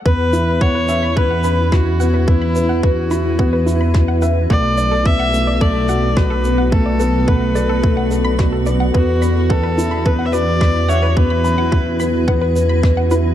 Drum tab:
SH |-x-x-x-x|-x-x-x-x|-x-x-x-x|-x-x-x-x|
SD |------r-|------r-|------r-|------r-|
BD |o-o-o-o-|o-o-o-o-|o-o-o-o-|o-o-o-o-|

SH |-x-x-x-x|-x-x-x-x|
SD |------r-|------r-|
BD |o-o-o-o-|o-o-o-o-|